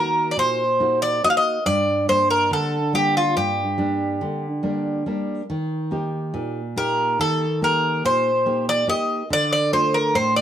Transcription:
0.00 0.34 D#3 medium
0.00 0.62 A#3 medium
0.00 0.62 D#4 soft
0.00 0.63 F#4 medium
0.00 0.32 A#4 medium
0.31 0.37 D5 medium
0.37 1.20 A#2 medium
0.37 0.98 C5 medium
0.80 1.23 A#3 soft
0.80 1.23 D#4 soft
0.80 1.23 F#4 medium
1.02 1.22 D5 loud
1.24 1.58 A#3 soft
1.24 1.58 D#4 soft
1.24 1.58 F#4 medium
1.24 1.29 D#5 medium
1.30 1.37 F5 medium
1.37 1.66 D#5 medium
1.66 2.49 G2 medium
1.66 2.06 D5 loud
2.08 2.77 G3 soft
2.08 2.77 A#3 soft
2.08 2.77 D4 medium
2.08 2.29 C5 medium
2.30 2.52 A#4 medium
2.51 3.34 D3 medium
2.51 2.92 A4 medium
2.93 3.62 G3 soft
2.93 3.62 A#3 soft
2.93 3.62 D4 medium
2.93 3.16 G4 medium
3.17 3.36 F4 medium
3.36 4.19 G2 medium
3.36 5.03 G4 medium
3.78 4.46 G3 soft
3.78 4.47 A#3 soft
3.78 4.47 D4 medium
4.21 5.04 D3 medium
4.63 5.05 G3 soft
4.63 5.06 A#3 soft
4.63 5.06 D4 medium
5.06 5.41 G3 soft
5.06 5.41 A#3 soft
5.06 5.41 D4 medium
5.50 6.32 D#3 medium
5.91 6.59 A#3 medium
5.91 6.60 D#4 soft
5.91 6.60 G4 medium
6.34 7.16 A#2 medium
6.76 7.44 A#3 soft
6.76 7.45 D#4 soft
6.76 7.45 G4 soft
6.76 7.20 A#4 medium
7.19 8.01 D#3 medium
7.19 7.59 A4 medium
7.62 8.29 A#3 soft
7.62 8.30 D#4 soft
7.62 8.30 G4 medium
7.62 8.05 A#4 medium
8.05 8.86 A#2 medium
8.05 8.64 C5 medium
8.46 8.86 A#3 soft
8.46 8.87 D#4 soft
8.46 8.87 G4 medium
8.69 8.88 D5 loud
8.87 9.22 A#3 soft
8.87 9.22 D#4 soft
8.87 9.22 G4 medium
8.87 9.28 D#5 medium
9.30 10.12 D3 medium
9.30 9.51 D5 loud
9.53 9.72 D5 medium
9.72 10.40 A3 soft
9.72 10.40 D4 soft
9.72 10.41 F4 soft
9.72 9.95 C5 medium
9.94 10.16 A#4 medium
10.15 10.41 A2 medium
10.15 10.35 C5 medium
10.36 10.41 D5 medium

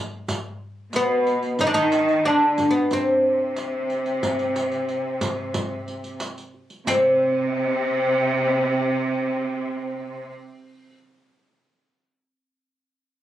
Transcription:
0.28 riq medium
0.28 darbuka dum loud
0.93 1.56 B2 medium
0.93 1.57 B3 medium
0.93 1.03 B4 medium
0.93 riq soft
0.93 darbuka tek medium
1.02 1.11 C5 medium
1.10 1.62 B4 medium
1.27 riq soft
1.43 riq soft
1.43 darbuka ka soft
1.59 1.73 D#3 medium
1.59 1.66 D#4 medium
1.59 1.72 D#5 medium
1.59 riq soft
1.59 darbuka dum medium
1.67 1.74 D4 medium
1.73 2.23 D#3 medium
1.73 2.25 D#4 medium
1.73 2.27 D#5 medium
1.73 riq soft
1.73 darbuka ka soft
1.92 riq medium
1.92 darbuka tek medium
2.08 riq soft
2.25 2.70 D3 medium
2.25 2.71 D4 medium
2.25 2.72 D5 medium
2.25 darbuka ka soft
2.58 riq medium
2.58 darbuka dum medium
2.69 2.92 B2 medium
2.69 2.93 B3 medium
2.69 2.94 B4 medium
2.90 6.21 C3 medium
2.90 6.19 C4 medium
2.90 6.22 C5 medium
2.90 riq medium
2.90 darbuka dum loud
3.56 riq soft
3.56 darbuka tek medium
3.90 riq soft
4.06 riq soft
4.06 darbuka ka soft
4.23 riq medium
4.23 darbuka dum loud
4.39 riq soft
4.39 darbuka ka soft
4.56 riq soft
4.56 darbuka tek medium
4.72 riq soft
4.72 darbuka ka soft
4.89 riq soft
4.89 darbuka ka soft
5.21 riq medium
5.21 darbuka dum loud
5.54 riq medium
5.54 darbuka dum loud
5.88 riq soft
5.88 darbuka ka soft
6.04 riq soft
6.20 riq medium
6.20 darbuka tek medium
6.38 riq soft
6.54 darbuka ka soft
6.70 riq soft
6.70 darbuka ka soft
6.87 10.27 C3 loud
6.87 10.98 C4 medium
6.87 10.28 C5 loud
6.87 riq medium
6.87 darbuka dum medium

